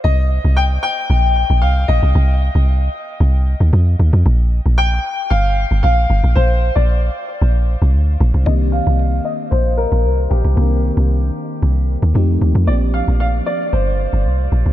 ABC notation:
X:1
M:4/4
L:1/16
Q:1/4=114
K:Cm
V:1 name="Grand piano"
e4 g2 g6 f2 e2- | e8- e2 z6 | z4 g4 f4 f4 | c3 d4 z8 z |
e2 f4 e2 c2 B4 G2- | G8- G2 z6 | d2 f2 f2 d2 c8 |]
V:2 name="FM electric piano"
z16 | z16 | z16 | z16 |
[E,B,CDG]16 | [E,B,CDB]12 [F,=A,CEG]4 | [F,B,CDG]16 |]
V:3 name="Log drum bass" clef=bass
C,,3 C,,3 z2 B,,,3 B,,, C,,2 B,,, C,, | C,,3 C,,3 z2 C,,3 E,, F,,2 E,, F,, | B,,,3 B,,,3 z2 G,,,3 G,,, B,,,2 G,,, B,,, | B,,,3 B,,,3 z2 B,,,3 C,, D,,2 B,,, C,, |
C,,3 C,,3 z2 B,,,3 B,,, C,,2 B,,, C,, | C,,3 C,,3 z2 C,,3 E,, F,,2 E,, F,, | B,,,3 B,,,3 z2 G,,,3 G,,, C,,2 B,,, C,, |]